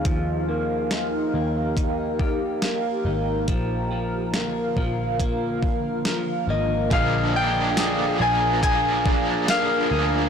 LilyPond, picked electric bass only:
\new Staff \with { instrumentName = "Picked electric bass" } { \clef bass \time 4/4 \key bes \mixolydian \tempo 4 = 70 ees,4. ees,2 aes,,8 | bes,,4. bes,,2 aes,,8 | bes,,4. bes,,2 d,8 | }